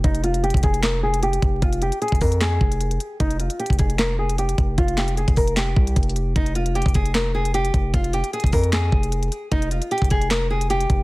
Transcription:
0.04 F1 D#4, kick, closed hi-hat
0.15 closed hi-hat
0.24 F4, closed hi-hat
0.34 closed hi-hat
0.43 G4, closed hi-hat
0.50 F1, kick, closed hi-hat
0.57 closed hi-hat
0.63 F1 G#4, kick, closed hi-hat
0.74 closed hi-hat
0.83 A#4, snare, clap, closed hi-hat
1.03 G#4
1.14 closed hi-hat
1.23 G4, closed hi-hat
1.33 closed hi-hat
1.42 F1, kick, closed hi-hat
1.62 F1 F4, kick, closed hi-hat
1.73 closed hi-hat
1.82 G4, closed hi-hat
1.92 closed hi-hat
2.02 G#4, closed hi-hat
2.08 F1, kick, closed hi-hat
2.15 closed hi-hat
2.21 F2 A#4, kick, open hi-hat
2.32 closed hi-hat
2.41 G#4, snare, clap, closed hi-hat
2.61 F1, kick
2.72 closed hi-hat
2.81 closed hi-hat
2.91 closed hi-hat
3.00 closed hi-hat
3.20 F1 D#4, kick, closed hi-hat
3.31 closed hi-hat
3.40 F4, closed hi-hat
3.50 closed hi-hat
3.59 G4, closed hi-hat
3.66 F1, kick, closed hi-hat
3.73 closed hi-hat
3.79 G#4, kick, closed hi-hat
3.90 closed hi-hat
3.99 A#4, snare, clap, closed hi-hat
4.19 G#4
4.29 closed hi-hat
4.38 G4, closed hi-hat
4.49 closed hi-hat
4.58 F1, kick, closed hi-hat
4.78 F1 F4, kick, closed hi-hat
4.88 closed hi-hat
4.97 G4, snare, clap, closed hi-hat
5.08 closed hi-hat
5.17 G#4, closed hi-hat
5.28 F1, kick, closed hi-hat
5.36 A#4, kick, open hi-hat
5.48 closed hi-hat
5.56 G4, snare, clap, closed hi-hat
5.76 C2, kick
5.87 closed hi-hat
5.96 F1, kick, closed hi-hat
6.03 closed hi-hat
6.09 closed hi-hat
6.16 closed hi-hat
6.36 F1 D#4, kick, closed hi-hat
6.46 closed hi-hat
6.55 F4, closed hi-hat
6.66 closed hi-hat
6.75 G4, closed hi-hat
6.82 F1, kick, closed hi-hat
6.88 closed hi-hat
6.94 F1 G#4, kick, closed hi-hat
7.06 closed hi-hat
7.14 A#4, snare, clap, closed hi-hat
7.35 G#4
7.45 closed hi-hat
7.54 G4, closed hi-hat
7.65 closed hi-hat
7.74 F1, kick, closed hi-hat
7.94 F1 F4, kick, closed hi-hat
8.04 closed hi-hat
8.13 G4, closed hi-hat
8.24 closed hi-hat
8.33 G#4, closed hi-hat
8.40 F1, kick, closed hi-hat
8.46 closed hi-hat
8.52 F2 A#4, kick, open hi-hat
8.64 closed hi-hat
8.72 G#4, snare, clap, closed hi-hat
8.92 F1, kick
9.03 closed hi-hat
9.12 closed hi-hat
9.23 closed hi-hat
9.32 closed hi-hat
9.52 F1 D#4, kick, closed hi-hat
9.62 closed hi-hat
9.71 F4, closed hi-hat
9.82 closed hi-hat
9.91 G4, closed hi-hat
9.98 F1, kick, closed hi-hat
10.04 closed hi-hat
10.10 G#4, kick, closed hi-hat
10.21 closed hi-hat
10.30 A#4, snare, clap, closed hi-hat
10.50 G#4
10.61 closed hi-hat
10.70 G4, closed hi-hat
10.81 closed hi-hat
10.90 F1, kick, closed hi-hat

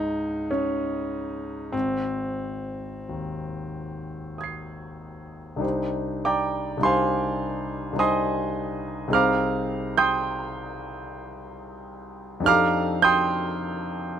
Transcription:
Already playing: C#2 G#2 G#3 D#4
0.51 C#4
1.72 G#1 C4
3.09 D#2
4.38 D#6 G#6
4.44 C7
5.56 C2 D4 D#4
5.61 G4 C5
6.25 D5 G5 A#5 D6
6.77 C2 D4 D#4
6.82 G4 C5 F5 G#5 C6
7.93 C2 D4 D#4
7.97 G4 C5 D#5 G#5 C6 D#6
9.08 C2 C4 D#4 G#4
9.13 C5 F5 A#5 D6 F6
9.97 G5 C6 D#6 G6
12.40 F2 D4 D#4
12.45 G4 A4 F5 A#5 D6 F6
13.02 G5 C6 D#6 G6

